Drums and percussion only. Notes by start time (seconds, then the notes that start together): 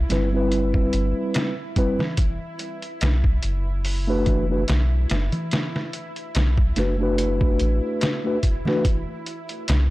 0.10 snare, closed hi-hat
0.52 closed hi-hat
0.74 kick
0.93 closed hi-hat
1.34 snare, closed hi-hat, darbuka tek
1.76 kick, closed hi-hat
1.99 snare, darbuka dum
2.17 kick, closed hi-hat
2.59 closed hi-hat
2.82 closed hi-hat
3.01 snare, closed hi-hat, darbuka tek
3.24 kick
3.43 closed hi-hat
3.85 open hi-hat
4.26 kick, closed hi-hat, darbuka dum
4.68 snare, closed hi-hat, darbuka tek
5.10 snare, closed hi-hat
5.32 closed hi-hat, darbuka dum
5.51 snare, closed hi-hat
5.76 snare
5.93 closed hi-hat
6.16 closed hi-hat
6.35 snare, closed hi-hat, darbuka tek
6.58 kick
6.76 snare, closed hi-hat
7.18 closed hi-hat
7.41 kick
7.59 closed hi-hat
8.01 snare, closed hi-hat, darbuka tek
8.43 kick, closed hi-hat
8.65 snare, darbuka dum
8.85 kick, closed hi-hat
9.26 closed hi-hat
9.49 closed hi-hat
9.68 snare, closed hi-hat, darbuka tek